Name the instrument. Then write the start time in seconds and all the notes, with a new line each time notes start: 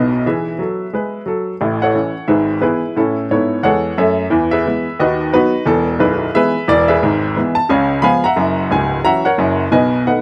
grand piano
Already playing: B1 B2 F#3 B3 B4 D#5
0.26 E3 G#4 B4 E5
0.59 F#3 A4
0.93 G#3 B4
1.26 F#3 A4
1.61 A1 A2
1.82 A4 C#5 F#5
1.94 E3 A3 C#4
2.28 G#1 G#2 G#4 B4 E5
2.61 E3 B3 E4 G#4 B4
2.96 A2 C#4 E4 A4
3.31 G#2 B3 E4 A4 C#5
3.63 E2 G#3 A4 C#5 F#5
3.98 F#2 A3 A4 C#5 E5
4.30 E2 E3
4.51 G#4 B4 E5
4.66 E3 G#3 B3
4.99 D#2 D#3 F#4 B4 D#5
5.33 F#3 B3 D#4 F#4 B4
5.66 E1 E2 A4
5.99 B0 B1 E4 G#4 B4
6.34 E3 G#3 B3 G#4 B4 E5
6.68 E1 E2 D5
6.88 G#4 B4 E5
7.03 G#1 G#2
7.36 E3 G#3 B3
7.55 A5
7.69 C#2 C#3 C#5 F5 G#5
8.02 F3 G#3 B3 F5 G#5 B5
8.24 E5 F#5 A#5
8.36 F#1 F#2
8.71 C#1 C#2 G#5
9.04 E3 F#3 C#4 E5 F#5 A#5
9.25 A#4 C#5 F#5
9.38 F#1 F#2
9.72 B1 B2 B4 D#5 G#5
10.06 D#3 A3 B3 B4 D#5 F#5